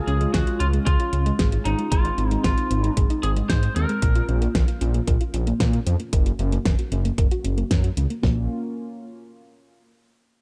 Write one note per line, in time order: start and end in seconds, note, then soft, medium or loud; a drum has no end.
0.00 3.98 G#3 medium
0.00 1.90 C#4 medium
0.00 1.90 F4 medium
0.07 0.26 C#2 loud
0.07 0.20 C#4 medium
0.07 0.32 G#4 medium
0.07 closed hi-hat soft
0.21 0.31 G#3 loud
0.21 closed hi-hat soft
0.34 0.43 C#2 medium
0.34 0.58 F#4 medium
0.34 0.45 G#4 loud
0.34 kick loud
0.34 snare loud
0.34 closed hi-hat medium
0.47 0.58 F4 medium
0.47 closed hi-hat soft
0.60 0.79 C#2 loud
0.60 0.67 C#4 medium
0.60 0.67 F4 medium
0.60 closed hi-hat medium
0.73 0.80 G#3 medium
0.73 closed hi-hat soft
0.86 0.96 C#2 loud
0.86 1.61 F4 medium
0.86 0.97 G#4 loud
0.86 kick loud
0.86 closed hi-hat loud
1.00 1.06 F4 loud
1.00 closed hi-hat soft
1.13 1.32 C#2 medium
1.13 1.25 C#4 medium
1.13 closed hi-hat medium
1.26 1.37 G#3 loud
1.26 closed hi-hat soft
1.39 1.58 G#1 medium
1.39 1.52 G#4 loud
1.39 kick loud
1.39 snare loud
1.39 closed hi-hat medium
1.52 1.63 F4 medium
1.52 closed hi-hat soft
1.65 1.75 G#1 medium
1.65 1.76 C#4 medium
1.65 1.90 D#4 medium
1.65 closed hi-hat medium
1.79 1.85 G#3 medium
1.79 closed hi-hat soft
1.91 2.11 G#1 loud
1.91 4.00 C4 medium
1.91 4.00 D#4 medium
1.91 2.41 F4 medium
1.91 2.03 G#4 medium
1.91 kick loud
1.91 closed hi-hat loud
2.05 2.16 D#4 loud
2.05 closed hi-hat soft
2.18 2.37 G#1 loud
2.18 2.31 C4 medium
2.18 closed hi-hat soft
2.31 2.42 G#3 loud
2.31 closed hi-hat soft
2.44 2.54 G#1 medium
2.44 2.93 F4 medium
2.44 2.55 G#4 loud
2.44 kick loud
2.44 snare loud
2.44 closed hi-hat medium
2.57 2.68 D#4 medium
2.57 closed hi-hat soft
2.71 2.90 G#1 medium
2.71 2.77 C4 medium
2.71 closed hi-hat medium
2.84 2.90 G#3 medium
2.84 closed hi-hat soft
2.97 3.06 G#1 loud
2.97 3.08 G#4 loud
2.97 kick loud
2.97 closed hi-hat loud
3.10 3.17 D#4 loud
3.10 closed hi-hat soft
3.23 3.42 G#1 loud
3.23 3.36 C4 medium
3.23 3.30 G#4 medium
3.23 closed hi-hat medium
3.36 3.47 G#3 loud
3.36 closed hi-hat soft
3.49 3.69 G#2 medium
3.49 3.62 G#4 loud
3.49 3.76 C5 loud
3.49 kick loud
3.49 snare loud
3.49 closed hi-hat loud
3.63 3.74 D#4 medium
3.63 closed hi-hat soft
3.76 3.85 D#2 medium
3.76 3.87 C4 medium
3.76 4.25 A#4 medium
3.76 closed hi-hat medium
3.89 3.96 G#3 medium
3.89 closed hi-hat soft
4.02 4.21 A#1 medium
4.02 8.19 A#3 medium
4.02 8.19 C#4 medium
4.02 6.11 F4 medium
4.02 4.13 A#4 medium
4.02 kick loud
4.02 closed hi-hat loud
4.15 4.26 F4 loud
4.15 closed hi-hat soft
4.28 4.47 A#1 loud
4.28 4.41 C#4 medium
4.28 closed hi-hat soft
4.42 4.52 A#3 loud
4.42 closed hi-hat soft
4.55 4.64 A#1 medium
4.55 4.66 A#4 loud
4.55 kick loud
4.55 snare loud
4.55 closed hi-hat medium
4.68 4.79 F4 medium
4.68 closed hi-hat soft
4.81 5.00 A#1 loud
4.81 4.88 C#4 medium
4.81 closed hi-hat medium
4.94 5.01 A#3 medium
4.94 closed hi-hat soft
5.08 5.17 A#1 loud
5.08 5.18 A#4 loud
5.08 kick loud
5.08 closed hi-hat medium
5.21 5.27 F4 loud
5.21 closed hi-hat soft
5.34 5.53 A#1 loud
5.34 5.46 C#4 medium
5.34 closed hi-hat medium
5.47 5.58 A#3 loud
5.47 closed hi-hat soft
5.60 5.79 A#2 medium
5.60 5.73 A#4 loud
5.60 kick loud
5.60 snare loud
5.60 closed hi-hat medium
5.73 5.84 F4 medium
5.73 closed hi-hat soft
5.86 5.96 F2 medium
5.86 5.97 C#4 medium
5.86 closed hi-hat medium
6.00 6.06 A#3 medium
6.00 closed hi-hat soft
6.13 6.32 F#1 loud
6.13 8.21 F#4 medium
6.13 6.24 A#4 loud
6.13 kick loud
6.13 closed hi-hat medium
6.26 6.37 F#4 medium
6.26 closed hi-hat soft
6.39 6.58 F#1 loud
6.39 6.52 C#4 medium
6.39 closed hi-hat soft
6.52 6.63 A#3 loud
6.52 closed hi-hat soft
6.65 6.75 F#1 medium
6.65 6.76 A#4 loud
6.65 kick loud
6.65 snare loud
6.65 closed hi-hat medium
6.79 6.89 F#4 medium
6.79 closed hi-hat soft
6.92 7.11 F#1 medium
6.92 6.98 C#4 medium
6.92 closed hi-hat medium
7.05 7.11 A#3 medium
7.05 closed hi-hat soft
7.18 7.28 F#1 loud
7.18 7.29 A#4 loud
7.18 kick loud
7.18 closed hi-hat medium
7.31 7.38 F#4 loud
7.31 closed hi-hat soft
7.44 7.63 F#1 medium
7.44 7.57 C#4 medium
7.44 closed hi-hat medium
7.58 7.68 A#3 loud
7.58 closed hi-hat soft
7.71 7.90 F#2 medium
7.71 7.83 A#4 loud
7.71 kick loud
7.71 snare loud
7.71 closed hi-hat medium
7.84 7.95 F#4 medium
7.84 closed hi-hat soft
7.97 8.06 C#2 medium
7.97 8.08 C#4 medium
7.97 closed hi-hat medium
8.10 8.17 A#3 medium
8.10 closed hi-hat soft
8.23 8.48 A#1 medium
8.23 8.48 A#3 medium
8.23 8.48 C#4 medium
8.23 8.48 F4 medium
8.23 kick loud
8.23 snare loud